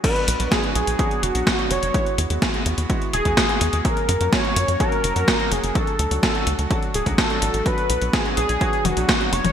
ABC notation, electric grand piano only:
X:1
M:4/4
L:1/16
Q:1/4=126
K:Bdor
V:1 name="Electric grand piano"
[F,B,DF]3 [F,B,DF]2 [F,B,DF]3 [F,B,DF]3 [F,B,DF] z [F,B,DF]3 | [G,B,EF]3 [G,B,EF]2 [G,B,EF]3 [G,B,EF]3 [G,B,EF] z [G,B,EF]3 | [F,^A,CF]3 [F,A,CF]2 [F,A,CF]3 [F,A,CF]3 [F,A,CF] z [F,A,CF]3 | [F,A,DF]3 [F,A,DF]2 [F,A,DF]3 [F,A,DF]3 [F,A,DF] z [F,A,DF]3 |
[F,B,DF]3 [F,B,DF]2 [F,B,DF]3 [F,B,DF]3 [F,B,DF] z [F,B,DF]3 |]